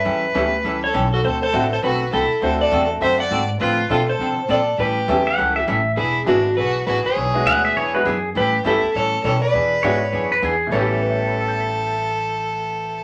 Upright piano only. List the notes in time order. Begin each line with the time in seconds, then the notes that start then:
0.35 A3 B3 C#4 E4 G4
1.53 A3 C4 D4 E4 F#4
2.42 A3 C4 D4 E4 F#4
3.90 A3 C4 D4 F4 A4
5.08 A3 B3 C#4 E4 G4
6.26 G#3 B3 D4 E4 F#4
7.34 G#3 B3 D4 E4 F#4
7.94 G#3 B3 D4 E4 F#4
8.65 A3 B3 C#4 E4 G4
9.83 G#3 B3 D4 E4 F#4
10.67 A2 A3
10.73 B3 C#4
10.78 G4
11.03 B4
11.10 E5
11.18 G5
11.28 B5
11.37 E6
11.48 G6
11.60 B6